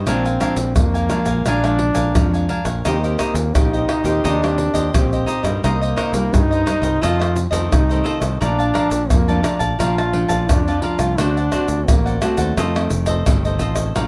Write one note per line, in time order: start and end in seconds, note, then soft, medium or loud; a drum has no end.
0.06 0.37 A#1 medium
0.06 0.73 A#2 medium
0.06 0.27 F3 medium
0.06 0.28 G#3 medium
0.06 0.73 C4 medium
0.06 0.23 D4 medium
0.06 0.28 D4 medium
0.06 0.24 A#4 medium
0.06 0.24 F5 medium
0.06 0.23 G#5 medium
0.06 pandeiro medium
0.06 tamborim medium
0.06 shaker medium
0.06 surdo medium
0.25 0.40 A#4 soft
0.25 0.40 F5 soft
0.25 0.41 G#5 soft
0.25 pandeiro soft
0.25 shaker soft
0.40 1.05 F3 medium
0.40 1.05 G#3 medium
0.40 0.55 D4 medium
0.40 1.06 D4 medium
0.40 0.55 A#4 medium
0.40 0.55 F5 medium
0.40 0.56 G#5 medium
0.40 pandeiro medium
0.40 tamborim medium
0.40 shaker medium
0.40 surdo soft
0.56 0.73 A#1 medium
0.56 muted cavaquinho stroke soft
0.56 pandeiro medium
0.56 shaker medium
0.76 1.43 F2 medium
0.76 1.07 F2 medium
0.76 1.48 A#3 loud
0.76 pandeiro medium
0.76 tamborim medium
0.76 shaker medium
0.76 surdo loud
0.94 1.09 A#4 soft
0.94 1.09 F5 soft
0.94 1.10 G#5 medium
0.94 pandeiro soft
0.94 shaker soft
1.09 1.40 F3 medium
1.09 1.40 G#3 medium
1.09 1.26 D4 soft
1.09 1.41 D4 medium
1.09 1.26 A#4 medium
1.09 1.25 F5 medium
1.09 1.25 G#5 medium
1.09 pandeiro medium
1.09 tamborim medium
1.09 shaker medium
1.26 1.42 A#1 medium
1.26 1.44 A#4 soft
1.26 1.44 F5 medium
1.26 1.43 G#5 medium
1.26 pandeiro medium
1.26 shaker medium
1.26 surdo soft
1.46 1.90 A#1 medium
1.46 2.12 A#2 medium
1.46 1.58 F3 medium
1.46 1.58 G#3 medium
1.46 1.62 D4 medium
1.46 2.51 D4 loud
1.46 1.59 D4 medium
1.46 1.63 A#4 medium
1.46 1.63 F5 medium
1.46 1.63 G#5 medium
1.46 pandeiro medium
1.46 tamborim medium
1.46 shaker medium
1.46 surdo medium
1.64 2.10 F3 medium
1.64 2.10 G#3 medium
1.64 2.11 D4 medium
1.64 1.78 A#4 soft
1.64 1.79 F5 soft
1.64 1.79 G#5 medium
1.64 pandeiro soft
1.64 tamborim medium
1.64 shaker soft
1.79 muted cavaquinho stroke soft
1.79 pandeiro medium
1.95 2.12 A#1 medium
1.95 2.31 A#4 medium
1.95 2.30 F5 medium
1.95 2.30 G#5 medium
1.95 pandeiro medium
1.95 shaker medium
1.95 surdo soft
2.15 2.81 F2 medium
2.15 2.45 F2 medium
2.15 2.60 F3 medium
2.15 2.60 G#3 medium
2.15 2.60 D4 medium
2.15 pandeiro medium
2.15 tamborim medium
2.15 shaker medium
2.15 surdo loud
2.33 2.48 A#4 soft
2.33 2.49 F5 soft
2.33 2.49 G#5 medium
2.33 pandeiro soft
2.33 shaker soft
2.49 2.66 D4 medium
2.49 2.66 A#4 medium
2.49 2.65 F5 medium
2.49 2.64 G#5 medium
2.49 pandeiro medium
2.65 2.81 A#1 medium
2.65 2.83 A#4 soft
2.65 2.83 F5 soft
2.65 2.83 G#5 soft
2.65 pandeiro medium
2.65 tamborim medium
2.65 shaker medium
2.65 surdo soft
2.85 3.15 D#2 medium
2.85 3.52 D#3 medium
2.85 2.96 A#3 medium
2.85 3.56 A#3 medium
2.85 2.96 C4 medium
2.85 3.01 D#4 medium
2.85 3.01 G4 medium
2.85 2.97 G4 medium
2.85 3.02 C5 medium
2.85 3.02 D#5 medium
2.85 pandeiro medium
2.85 tamborim medium
2.85 shaker medium
2.85 surdo medium
3.03 3.50 A#3 medium
3.03 3.50 C4 medium
3.03 3.19 G4 soft
3.03 3.51 G4 medium
3.03 3.19 C5 soft
3.03 3.19 D#5 soft
3.03 pandeiro soft
3.03 shaker soft
3.19 3.33 D#4 medium
3.19 3.33 G4 medium
3.19 3.34 C5 medium
3.19 3.34 D#5 medium
3.19 pandeiro medium
3.19 tamborim medium
3.19 shaker medium
3.19 surdo soft
3.34 3.50 D#2 medium
3.34 muted cavaquinho stroke soft
3.34 pandeiro medium
3.34 shaker medium
3.55 3.84 A#1 medium
3.55 4.21 A#2 medium
3.55 4.01 A#3 medium
3.55 4.02 C4 medium
3.55 4.27 D#4 loud
3.55 4.02 G4 medium
3.55 pandeiro medium
3.55 tamborim medium
3.55 shaker medium
3.55 surdo loud
3.73 3.88 G4 soft
3.73 3.88 C5 soft
3.73 3.89 D#5 soft
3.73 pandeiro soft
3.73 shaker soft
3.88 4.05 D#4 soft
3.88 4.04 G4 soft
3.88 4.04 C5 medium
3.88 4.02 D#5 medium
3.88 pandeiro medium
3.88 tamborim medium
4.04 4.20 D#2 medium
4.04 4.35 A#3 medium
4.04 4.35 C4 medium
4.04 4.22 G4 medium
4.04 4.35 G4 medium
4.04 4.22 C5 medium
4.04 4.21 D#5 medium
4.04 pandeiro medium
4.04 shaker medium
4.04 surdo soft
4.24 4.69 D#2 medium
4.24 4.91 D#3 medium
4.24 4.96 D4 loud
4.24 4.40 D#4 medium
4.24 4.40 G4 medium
4.24 4.41 C5 medium
4.24 4.41 D#5 medium
4.24 pandeiro medium
4.24 tamborim medium
4.24 shaker medium
4.24 surdo medium
4.42 4.89 A#3 medium
4.42 4.89 C4 medium
4.42 4.57 G4 soft
4.42 4.89 G4 medium
4.42 4.57 C5 soft
4.42 4.57 D#5 soft
4.42 pandeiro soft
4.42 tamborim medium
4.42 shaker soft
4.58 muted cavaquinho stroke soft
4.58 pandeiro medium
4.74 4.90 D#2 medium
4.74 5.09 G4 medium
4.74 5.09 C5 medium
4.74 5.08 D#5 medium
4.74 pandeiro medium
4.74 shaker medium
4.74 surdo soft
4.94 5.23 A#1 medium
4.94 5.60 A#2 medium
4.94 5.26 A#3 medium
4.94 5.26 C4 medium
4.94 5.46 C4 medium
4.94 5.27 G4 medium
4.94 pandeiro medium
4.94 tamborim medium
4.94 shaker medium
4.94 surdo loud
5.13 5.26 G4 soft
5.13 5.26 C5 soft
5.13 5.27 D#5 soft
5.13 pandeiro soft
5.13 shaker soft
5.26 5.43 D#4 medium
5.26 5.43 G4 medium
5.26 5.43 C5 medium
5.26 5.42 D#5 medium
5.26 pandeiro medium
5.26 shaker medium
5.26 surdo soft
5.43 5.59 G2 medium
5.43 5.74 G3 medium
5.43 5.74 A#3 medium
5.43 5.74 D#4 medium
5.43 5.61 G4 soft
5.43 5.61 C5 soft
5.43 5.60 D#5 soft
5.43 pandeiro medium
5.43 tamborim medium
5.43 shaker medium
5.43 surdo soft
5.64 5.93 C2 medium
5.64 6.30 C3 medium
5.64 6.35 A#3 loud
5.64 5.79 D#4 medium
5.64 5.80 A#4 medium
5.64 5.80 C5 medium
5.64 5.80 D#5 medium
5.64 pandeiro medium
5.64 tamborim medium
5.64 shaker medium
5.64 surdo medium
5.81 5.96 A#4 soft
5.81 5.97 C5 soft
5.81 5.97 D#5 medium
5.81 pandeiro soft
5.81 shaker soft
5.96 6.11 D#4 medium
5.96 6.12 A#4 medium
5.96 6.12 C5 medium
5.96 6.12 D#5 medium
5.96 pandeiro medium
5.96 tamborim medium
5.96 surdo soft
6.13 6.28 C2 medium
6.13 6.61 G3 medium
6.13 6.61 A#3 medium
6.13 6.61 D#4 medium
6.13 muted cavaquinho stroke soft
6.13 pandeiro medium
6.13 shaker medium
6.32 6.98 G2 medium
6.32 6.62 G2 medium
6.32 7.04 D#4 loud
6.32 pandeiro medium
6.32 tamborim medium
6.32 shaker medium
6.32 surdo loud
6.51 6.65 A#4 soft
6.51 6.65 C5 medium
6.51 6.66 D#5 medium
6.51 pandeiro soft
6.51 shaker soft
6.66 6.88 G3 medium
6.66 6.88 A#3 soft
6.66 6.82 D#4 soft
6.66 6.88 D#4 medium
6.66 6.82 A#4 medium
6.66 6.82 C5 medium
6.66 6.80 D#5 medium
6.66 pandeiro medium
6.66 tamborim medium
6.66 shaker medium
6.82 6.98 C2 medium
6.82 7.00 A#4 medium
6.82 7.00 C5 medium
6.82 6.99 D#5 medium
6.82 pandeiro medium
6.82 shaker medium
6.82 surdo soft
7.01 7.46 F2 medium
7.01 7.68 F2 medium
7.01 7.35 D#3 medium
7.01 7.35 A3 medium
7.01 7.35 C4 medium
7.01 7.18 F4 medium
7.01 7.45 F4 loud
7.01 7.18 A4 medium
7.01 7.18 C5 medium
7.01 7.18 D#5 medium
7.01 pandeiro medium
7.01 tamborim medium
7.01 shaker medium
7.01 surdo medium
7.19 7.34 A4 soft
7.19 7.34 C5 soft
7.19 7.35 D#5 medium
7.19 pandeiro soft
7.19 tamborim medium
7.19 shaker soft
7.35 muted cavaquinho stroke soft
7.35 pandeiro medium
7.35 shaker medium
7.51 7.67 F2 medium
7.51 7.82 D#3 medium
7.51 7.82 A3 medium
7.51 7.82 C4 medium
7.51 7.87 A4 medium
7.51 7.86 C5 medium
7.51 7.86 D#5 medium
7.51 pandeiro medium
7.51 shaker medium
7.51 surdo soft
7.71 8.01 C2 loud
7.71 8.38 C3 medium
7.71 8.20 D#4 loud
7.71 pandeiro medium
7.71 tamborim medium
7.71 shaker medium
7.71 surdo loud
7.89 8.37 D#3 medium
7.89 8.37 A3 medium
7.89 8.37 C4 medium
7.89 8.03 A4 soft
7.89 8.04 C5 soft
7.89 8.04 D#5 medium
7.89 pandeiro soft
7.89 shaker soft
8.04 8.21 F4 medium
8.04 8.20 A4 medium
8.04 8.20 C5 medium
8.04 8.19 D#5 medium
8.04 pandeiro medium
8.20 8.37 C2 medium
8.20 8.39 A4 soft
8.20 8.38 C5 soft
8.20 8.38 D#5 soft
8.20 pandeiro medium
8.20 tamborim medium
8.20 shaker medium
8.20 surdo soft
8.41 8.71 A#1 loud
8.41 9.07 A#2 medium
8.41 8.61 F3 medium
8.41 8.62 A3 medium
8.41 8.61 D4 medium
8.41 9.12 D4 loud
8.41 8.57 A#4 medium
8.41 8.57 D5 medium
8.41 8.57 F5 medium
8.41 8.57 A5 medium
8.41 pandeiro medium
8.41 tamborim medium
8.41 shaker medium
8.41 surdo medium
8.59 8.73 D5 soft
8.59 8.74 F5 medium
8.59 8.74 A5 medium
8.59 pandeiro soft
8.59 shaker soft
8.74 9.21 F3 medium
8.74 9.22 A3 soft
8.74 9.22 D4 medium
8.74 8.89 A#4 medium
8.74 8.89 D5 medium
8.74 8.89 F5 medium
8.74 8.90 A5 medium
8.74 pandeiro medium
8.74 tamborim medium
8.74 surdo soft
8.90 9.07 A#1 medium
8.90 muted cavaquinho stroke soft
8.90 pandeiro medium
8.90 shaker medium
9.09 9.76 F2 medium
9.09 9.40 F2 medium
9.09 9.43 A#3 loud
9.09 pandeiro medium
9.09 tamborim medium
9.09 shaker medium
9.09 surdo loud
9.28 9.74 F3 medium
9.28 9.75 A3 medium
9.28 9.75 D4 medium
9.28 9.43 D5 soft
9.28 9.44 F5 medium
9.28 9.44 A5 medium
9.28 pandeiro soft
9.28 shaker soft
9.43 9.59 D4 medium
9.43 9.60 A#4 soft
9.43 9.59 D5 medium
9.43 9.59 F5 medium
9.43 9.58 A5 medium
9.43 pandeiro medium
9.43 tamborim medium
9.43 shaker medium
9.59 9.76 A#1 medium
9.59 9.77 D5 medium
9.59 9.77 F5 medium
9.59 9.77 A5 medium
9.59 pandeiro medium
9.59 shaker medium
9.59 surdo soft
9.79 10.24 A#1 medium
9.79 10.46 A#2 medium
9.79 10.00 F3 medium
9.79 10.00 A3 medium
9.79 10.00 D4 medium
9.79 10.51 F4 loud
9.79 9.95 A#4 medium
9.79 9.95 D5 medium
9.79 9.96 F5 medium
9.79 9.96 A5 medium
9.79 pandeiro medium
9.79 tamborim medium
9.79 shaker medium
9.79 surdo medium
9.98 10.12 D5 soft
9.98 10.13 F5 soft
9.98 10.13 A5 medium
9.98 pandeiro soft
9.98 tamborim medium
9.98 shaker soft
10.13 10.60 F3 medium
10.13 10.60 A3 medium
10.13 10.61 D4 medium
10.13 muted cavaquinho stroke soft
10.13 pandeiro medium
10.28 10.45 A#1 medium
10.28 10.64 D5 medium
10.28 10.64 F5 medium
10.28 10.63 A5 medium
10.28 pandeiro medium
10.28 shaker medium
10.28 surdo soft
10.49 10.79 F2 medium
10.49 11.15 F2 medium
10.49 10.83 D4 medium
10.49 pandeiro medium
10.49 tamborim medium
10.49 shaker medium
10.49 surdo medium
10.67 11.14 F3 medium
10.67 11.14 A3 medium
10.67 11.14 D4 medium
10.67 10.82 D5 soft
10.67 10.82 F5 soft
10.67 10.83 A5 soft
10.67 pandeiro soft
10.67 shaker soft
10.81 11.21 F4 loud
10.81 10.99 A#4 medium
10.81 10.99 D5 medium
10.81 10.98 F5 medium
10.81 10.97 A5 medium
10.81 pandeiro medium
10.98 11.15 C2 medium
10.98 11.17 D5 soft
10.98 11.16 F5 soft
10.98 11.16 A5 soft
10.98 pandeiro medium
10.98 tamborim medium
10.98 shaker medium
10.98 surdo soft
11.18 11.48 D2 medium
11.18 11.85 D3 medium
11.18 11.39 A3 medium
11.18 11.39 C4 medium
11.18 11.34 D4 medium
11.18 11.89 D4 loud
11.18 11.39 F#4 medium
11.18 11.35 C5 medium
11.18 11.35 D5 medium
11.18 11.35 F#5 medium
11.18 pandeiro medium
11.18 tamborim medium
11.18 shaker medium
11.18 surdo medium
11.37 11.51 C5 soft
11.37 11.52 D5 medium
11.37 11.52 F#5 soft
11.37 pandeiro soft
11.37 shaker soft
11.52 12.17 A3 medium
11.52 12.17 C4 medium
11.52 11.67 D4 medium
11.52 12.17 F#4 medium
11.52 11.67 C5 medium
11.52 11.68 D5 medium
11.52 11.68 F#5 medium
11.52 pandeiro medium
11.52 tamborim medium
11.52 shaker medium
11.52 surdo soft
11.68 11.84 D2 medium
11.68 muted cavaquinho stroke soft
11.68 pandeiro medium
11.68 shaker medium
11.88 12.18 A1 medium
11.88 12.23 A#3 medium
11.88 pandeiro medium
11.88 tamborim medium
11.88 shaker medium
11.88 surdo loud
12.05 12.21 C5 soft
12.05 12.22 D5 soft
12.05 12.21 F#5 soft
12.05 pandeiro soft
12.05 shaker soft
12.21 13.61 A3 medium
12.21 12.52 A3 medium
12.21 12.52 C4 medium
12.21 12.38 D4 medium
12.21 12.52 F#4 medium
12.21 12.38 C5 medium
12.21 12.37 D5 soft
12.21 12.37 F#5 medium
12.21 pandeiro medium
12.21 tamborim medium
12.21 shaker medium
12.37 12.53 D#2 medium
12.37 12.55 C5 soft
12.37 12.55 D5 medium
12.37 12.55 F#5 medium
12.37 pandeiro medium
12.37 shaker medium
12.37 surdo soft
12.57 12.87 F2 medium
12.57 13.23 F2 medium
12.57 12.69 D#3 soft
12.57 12.69 A3 soft
12.57 12.69 C4 medium
12.57 12.73 F4 medium
12.57 12.73 A4 medium
12.57 12.74 C5 medium
12.57 12.74 D#5 medium
12.57 pandeiro medium
12.57 tamborim medium
12.57 shaker medium
12.57 surdo medium
12.75 13.21 D#3 medium
12.75 13.21 A3 medium
12.75 13.21 C4 medium
12.75 12.91 A4 soft
12.75 12.91 C5 soft
12.75 12.91 D#5 medium
12.75 pandeiro soft
12.75 tamborim medium
12.75 shaker soft
12.90 13.23 F1 medium
12.90 muted cavaquinho stroke soft
12.90 pandeiro medium
12.90 shaker medium
13.06 13.42 A4 medium
13.06 13.42 C5 medium
13.06 13.41 D#5 medium
13.06 pandeiro medium
13.06 shaker medium
13.06 surdo soft
13.26 13.58 G1 medium
13.26 13.92 C3 medium
13.26 13.90 D#3 medium
13.26 13.90 A3 medium
13.26 13.90 C4 medium
13.26 pandeiro medium
13.26 tamborim medium
13.26 shaker medium
13.26 surdo loud
13.45 13.59 A4 soft
13.45 13.59 C5 soft
13.45 13.60 D#5 soft
13.45 pandeiro soft
13.45 shaker soft
13.59 13.92 A1 medium
13.59 13.76 F4 medium
13.59 13.76 A4 medium
13.59 13.75 C5 medium
13.59 13.74 D#5 medium
13.59 pandeiro medium
13.59 shaker medium
13.59 surdo soft
13.75 13.94 A4 soft
13.75 13.93 C5 soft
13.75 13.93 D#5 soft
13.75 pandeiro medium
13.75 tamborim medium
13.75 shaker medium
13.75 surdo soft
13.95 14.07 A#1 medium
13.95 14.07 A#2 medium
13.95 14.07 F3 medium
13.95 14.07 A3 medium
13.95 14.07 D4 medium
13.95 14.07 A#4 soft
13.95 14.07 D5 medium
13.95 14.07 F5 medium
13.95 14.07 A5 soft
13.95 pandeiro medium
13.95 tamborim medium
13.95 shaker medium
13.95 surdo soft